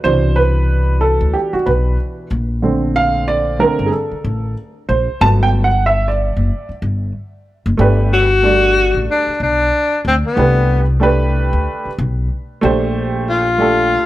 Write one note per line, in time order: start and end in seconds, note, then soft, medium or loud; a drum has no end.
0.04 1.17 C2 medium
0.04 2.27 B2 soft
0.04 2.26 E3 medium
0.04 2.27 D4 medium
0.04 0.38 C5 loud
0.36 1.03 B4 medium
1.01 1.34 A4 medium
1.21 1.32 D2 medium
1.33 1.53 G4 medium
1.53 1.67 F#4 medium
1.53 muted upright bass stroke soft
1.66 1.95 B1 medium
1.66 1.96 B4 medium
2.31 3.63 A#1 medium
2.62 3.55 D3 medium
2.62 3.56 A3 soft
2.62 3.56 C4 medium
2.96 3.26 F5 loud
3.28 3.61 D5 loud
3.59 3.88 D3 medium
3.59 3.89 A3 soft
3.59 3.89 C4 medium
3.59 3.87 A#4 medium
3.79 3.91 G1 medium
3.86 3.92 G#4 medium
3.92 4.52 A4 medium
4.11 muted upright bass stroke soft
4.24 4.53 A1 medium
4.89 5.06 A#1 medium
4.89 5.19 C5 medium
5.21 6.33 G1 loud
5.21 5.66 F#3 medium
5.21 5.66 A3 soft
5.21 5.67 B3 medium
5.21 5.26 A5 loud
5.43 5.48 G5 loud
5.64 5.84 F#5 medium
5.86 6.08 E5 medium
6.08 6.68 D5 medium
6.37 6.48 F#1 medium
6.69 muted upright bass stroke soft
6.82 7.11 G1 medium
7.66 7.78 F#1 medium
7.77 8.91 G1 loud
7.77 8.22 A3 medium
7.77 8.23 D4 medium
7.77 8.23 G4 medium
7.77 8.24 B4 medium
8.13 9.05 F#4 loud
8.42 9.30 G3 medium
8.42 9.29 A3 medium
8.42 9.30 D4 medium
8.42 9.31 D5 medium
8.94 9.06 A1 medium
9.11 9.39 D4 medium
9.27 muted upright bass stroke soft
9.40 9.69 B1 medium
9.40 10.02 D4 medium
10.05 10.22 D2 medium
10.05 10.15 C4 medium
10.26 10.86 B3 medium
10.36 11.49 C2 medium
10.36 10.80 A3 medium
10.36 10.81 D4 medium
10.36 10.81 G4 medium
10.36 10.82 B4 medium
11.00 11.87 A3 medium
11.00 11.88 D4 medium
11.00 11.88 G4 medium
11.00 11.89 B4 loud
11.53 11.65 D2 medium
11.85 muted upright bass stroke soft
11.98 12.27 B1 medium
12.61 13.96 A#1 medium
12.61 13.42 A3 medium
12.61 13.42 D4 medium
12.61 13.43 G4 medium
12.61 13.44 C5 medium
13.30 14.06 F4 medium
13.58 14.06 A3 medium
13.58 14.06 D4 medium
13.58 14.06 G4 medium
13.58 14.06 A4 medium